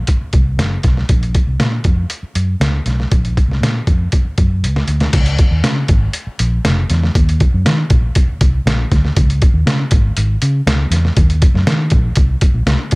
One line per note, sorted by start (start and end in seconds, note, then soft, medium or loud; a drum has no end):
0.07 kick medium
0.07 closed hi-hat medium
0.21 muted fingered electric bass stroke soft
0.33 0.59 C2 medium
0.33 kick medium
0.33 closed hi-hat medium
0.57 0.76 F#1 medium
0.57 snare medium
0.57 closed hi-hat medium
0.83 1.03 B1 medium
0.83 kick medium
0.83 snare soft
0.83 closed hi-hat medium
0.97 snare soft
1.09 1.37 A#1 medium
1.09 kick loud
1.09 closed hi-hat medium
1.23 closed hi-hat soft
1.35 kick medium
1.35 closed hi-hat medium
1.47 1.57 C2 medium
1.60 1.78 A#2 medium
1.60 snare loud
1.60 closed hi-hat medium
1.84 2.04 F2 medium
1.84 kick medium
1.84 closed hi-hat medium
2.10 closed hi-hat loud
2.23 muted fingered electric bass stroke soft
2.35 2.54 F#2 medium
2.35 closed hi-hat medium
2.60 2.79 C#2 medium
2.60 snare loud
2.60 closed hi-hat medium
2.86 3.05 B1 medium
2.86 snare soft
2.86 closed hi-hat medium
3.00 snare soft
3.12 3.40 A#1 medium
3.12 kick loud
3.12 closed hi-hat medium
3.25 closed hi-hat medium
3.37 kick medium
3.37 closed hi-hat medium
3.48 3.58 C2 medium
3.48 snare soft
3.61 3.80 A#2 medium
3.61 snare loud
3.61 closed hi-hat medium
3.87 4.06 F2 medium
3.87 kick medium
3.87 closed hi-hat medium
4.12 kick medium
4.12 closed hi-hat medium
4.25 muted fingered electric bass stroke soft
4.38 4.65 F#2 medium
4.38 kick medium
4.38 closed hi-hat medium
4.63 4.82 C#2 medium
4.63 closed hi-hat medium
4.76 snare soft
4.88 5.06 D2 medium
4.88 closed hi-hat medium
5.00 snare medium
5.00 closed hi-hat soft
5.13 5.41 C#2 loud
5.13 kick loud
5.13 closed hi-hat medium
5.13 crash loud
5.26 closed hi-hat medium
5.39 kick loud
5.39 closed hi-hat medium
5.51 5.61 D#2 medium
5.64 5.82 C#3 medium
5.64 snare loud
5.64 closed hi-hat medium
5.88 6.08 G#1 medium
5.88 kick loud
5.88 closed hi-hat medium
6.13 closed hi-hat loud
6.27 muted fingered electric bass stroke soft
6.39 6.58 A#1 medium
6.39 closed hi-hat loud
6.65 6.84 F1 medium
6.65 snare loud
6.65 closed hi-hat medium
6.90 7.09 E2 loud
6.90 snare soft
6.90 closed hi-hat medium
7.03 snare soft
7.15 7.43 D#2 loud
7.15 kick loud
7.15 closed hi-hat medium
7.29 closed hi-hat medium
7.40 kick medium
7.40 closed hi-hat medium
7.54 7.63 F#2 medium
7.65 7.84 D#3 loud
7.65 snare loud
7.65 closed hi-hat medium
7.90 8.09 A#1 medium
7.90 kick loud
7.90 closed hi-hat medium
8.15 kick medium
8.15 closed hi-hat loud
8.28 muted fingered electric bass stroke soft
8.41 8.59 C2 medium
8.41 kick loud
8.41 closed hi-hat loud
8.66 8.84 A#1 medium
8.66 snare loud
8.66 closed hi-hat medium
8.92 9.10 D2 medium
8.92 kick medium
8.92 snare soft
8.92 closed hi-hat medium
9.05 snare soft
9.16 9.44 C#2 loud
9.16 kick loud
9.16 closed hi-hat medium
9.30 closed hi-hat medium
9.42 kick loud
9.42 closed hi-hat medium
9.54 9.63 D#2 medium
9.66 9.84 C#3 loud
9.66 snare loud
9.66 closed hi-hat medium
9.91 10.10 G#1 medium
9.91 kick loud
9.91 closed hi-hat medium
10.17 10.35 G#1 medium
10.17 closed hi-hat loud
10.42 10.60 C#3 loud
10.42 closed hi-hat medium
10.66 10.85 C#2 loud
10.66 snare loud
10.66 closed hi-hat medium
10.91 11.09 E2 loud
10.91 snare soft
10.91 closed hi-hat medium
11.05 snare soft
11.17 11.44 D#2 loud
11.17 kick loud
11.17 closed hi-hat medium
11.30 closed hi-hat medium
11.42 kick medium
11.42 closed hi-hat medium
11.54 11.63 F#2 medium
11.54 snare soft
11.67 11.93 D#3 medium
11.67 snare loud
11.67 closed hi-hat medium
11.90 12.10 A#1 medium
11.90 kick loud
11.90 closed hi-hat medium
12.16 12.35 C2 medium
12.16 kick medium
12.16 closed hi-hat medium
12.41 kick loud
12.41 closed hi-hat medium
12.54 12.63 A#1 medium
12.66 12.76 C2 medium
12.66 snare loud
12.66 closed hi-hat medium
12.91 12.95 D2 loud
12.91 kick medium
12.91 closed hi-hat medium